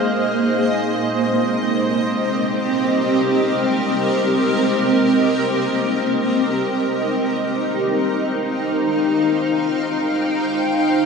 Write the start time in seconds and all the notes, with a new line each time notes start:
Already playing: G#3 A#3 D#4 G#4 C5 D#5 F5 F6
0.56 C4 C5 C6
0.86 G4
1.56 A#4
6.26 D#4
7.03 C5
7.60 F5
8.15 G5